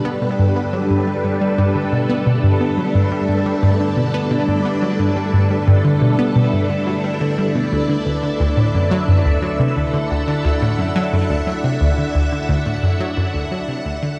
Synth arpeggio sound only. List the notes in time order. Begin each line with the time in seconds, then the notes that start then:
0.05 B3
0.22 B2
0.39 G2
0.56 B3
0.73 F#3
0.90 G2
1.07 G3
1.24 G2
1.41 G3
1.58 G2
1.75 D3
1.92 B2
2.09 B3
2.26 B2
2.43 G2
2.61 B3
2.78 F#3
2.95 G2
3.12 G3
3.29 G2
3.46 G3
3.63 G2
3.80 D3
3.97 B2
4.14 B3
4.31 B2
4.48 G2
4.65 B3
4.82 F#3
4.99 G2
5.16 G3
5.33 G2
5.50 G3
5.67 G2
5.85 D3
6.02 B2
6.19 B3
6.36 B2
6.53 G2
6.70 D3
6.87 F#3
7.04 G3
7.21 D3
7.38 G3
7.55 B2
7.72 D2
7.89 D3
8.06 D2
8.23 D3
8.40 D2
8.57 A2
8.74 F#2
8.91 F#3
9.08 F#2
9.25 D2
9.42 F#3
9.59 C3
9.77 D2
9.94 D3
10.11 D2
10.28 D3
10.45 D2
10.62 A2
10.79 F#2
10.96 F#3
11.13 F#2
11.30 D2
11.47 F#3
11.64 C3
11.81 D2
11.98 D3
12.15 D2
12.32 D3
12.49 D2
12.66 A2
12.83 F#2
13.00 F#3
13.17 F#2
13.34 D2
13.52 F#3
13.68 C3
13.86 D2
14.03 D3